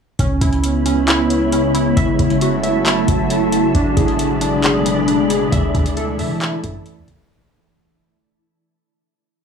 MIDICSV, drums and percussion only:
0, 0, Header, 1, 2, 480
1, 0, Start_track
1, 0, Tempo, 444444
1, 207, Time_signature, 4, 2, 24, 8
1, 10196, End_track
2, 0, Start_track
2, 0, Title_t, "Drums"
2, 207, Note_on_c, 9, 36, 125
2, 208, Note_on_c, 9, 42, 72
2, 315, Note_off_c, 9, 36, 0
2, 316, Note_off_c, 9, 42, 0
2, 447, Note_on_c, 9, 42, 69
2, 448, Note_on_c, 9, 36, 90
2, 555, Note_off_c, 9, 42, 0
2, 556, Note_off_c, 9, 36, 0
2, 568, Note_on_c, 9, 42, 40
2, 676, Note_off_c, 9, 42, 0
2, 687, Note_on_c, 9, 42, 73
2, 795, Note_off_c, 9, 42, 0
2, 926, Note_on_c, 9, 42, 64
2, 1034, Note_off_c, 9, 42, 0
2, 1167, Note_on_c, 9, 42, 65
2, 1172, Note_on_c, 9, 39, 114
2, 1275, Note_off_c, 9, 42, 0
2, 1280, Note_off_c, 9, 39, 0
2, 1407, Note_on_c, 9, 42, 77
2, 1515, Note_off_c, 9, 42, 0
2, 1646, Note_on_c, 9, 42, 69
2, 1754, Note_off_c, 9, 42, 0
2, 1886, Note_on_c, 9, 42, 70
2, 1994, Note_off_c, 9, 42, 0
2, 2127, Note_on_c, 9, 36, 121
2, 2127, Note_on_c, 9, 42, 74
2, 2235, Note_off_c, 9, 36, 0
2, 2235, Note_off_c, 9, 42, 0
2, 2367, Note_on_c, 9, 42, 70
2, 2368, Note_on_c, 9, 36, 91
2, 2475, Note_off_c, 9, 42, 0
2, 2476, Note_off_c, 9, 36, 0
2, 2487, Note_on_c, 9, 42, 41
2, 2595, Note_off_c, 9, 42, 0
2, 2607, Note_on_c, 9, 42, 72
2, 2715, Note_off_c, 9, 42, 0
2, 2846, Note_on_c, 9, 42, 65
2, 2954, Note_off_c, 9, 42, 0
2, 3087, Note_on_c, 9, 42, 67
2, 3092, Note_on_c, 9, 39, 116
2, 3195, Note_off_c, 9, 42, 0
2, 3200, Note_off_c, 9, 39, 0
2, 3328, Note_on_c, 9, 42, 76
2, 3330, Note_on_c, 9, 36, 96
2, 3436, Note_off_c, 9, 42, 0
2, 3438, Note_off_c, 9, 36, 0
2, 3567, Note_on_c, 9, 42, 66
2, 3675, Note_off_c, 9, 42, 0
2, 3806, Note_on_c, 9, 42, 72
2, 3914, Note_off_c, 9, 42, 0
2, 4047, Note_on_c, 9, 36, 120
2, 4047, Note_on_c, 9, 42, 72
2, 4155, Note_off_c, 9, 36, 0
2, 4155, Note_off_c, 9, 42, 0
2, 4287, Note_on_c, 9, 36, 91
2, 4287, Note_on_c, 9, 42, 69
2, 4395, Note_off_c, 9, 36, 0
2, 4395, Note_off_c, 9, 42, 0
2, 4407, Note_on_c, 9, 42, 42
2, 4515, Note_off_c, 9, 42, 0
2, 4526, Note_on_c, 9, 42, 70
2, 4634, Note_off_c, 9, 42, 0
2, 4765, Note_on_c, 9, 42, 67
2, 4873, Note_off_c, 9, 42, 0
2, 5007, Note_on_c, 9, 42, 66
2, 5011, Note_on_c, 9, 39, 116
2, 5115, Note_off_c, 9, 42, 0
2, 5119, Note_off_c, 9, 39, 0
2, 5247, Note_on_c, 9, 42, 80
2, 5355, Note_off_c, 9, 42, 0
2, 5486, Note_on_c, 9, 42, 69
2, 5594, Note_off_c, 9, 42, 0
2, 5725, Note_on_c, 9, 42, 72
2, 5833, Note_off_c, 9, 42, 0
2, 5966, Note_on_c, 9, 36, 117
2, 5967, Note_on_c, 9, 42, 68
2, 6074, Note_off_c, 9, 36, 0
2, 6075, Note_off_c, 9, 42, 0
2, 6206, Note_on_c, 9, 42, 43
2, 6207, Note_on_c, 9, 36, 89
2, 6314, Note_off_c, 9, 42, 0
2, 6315, Note_off_c, 9, 36, 0
2, 6327, Note_on_c, 9, 42, 67
2, 6435, Note_off_c, 9, 42, 0
2, 6446, Note_on_c, 9, 42, 73
2, 6554, Note_off_c, 9, 42, 0
2, 6685, Note_on_c, 9, 46, 52
2, 6793, Note_off_c, 9, 46, 0
2, 6927, Note_on_c, 9, 42, 63
2, 6932, Note_on_c, 9, 39, 112
2, 7035, Note_off_c, 9, 42, 0
2, 7040, Note_off_c, 9, 39, 0
2, 7167, Note_on_c, 9, 42, 79
2, 7169, Note_on_c, 9, 36, 93
2, 7275, Note_off_c, 9, 42, 0
2, 7277, Note_off_c, 9, 36, 0
2, 7406, Note_on_c, 9, 42, 65
2, 7514, Note_off_c, 9, 42, 0
2, 7646, Note_on_c, 9, 42, 74
2, 7647, Note_on_c, 9, 36, 95
2, 7754, Note_off_c, 9, 42, 0
2, 7755, Note_off_c, 9, 36, 0
2, 10196, End_track
0, 0, End_of_file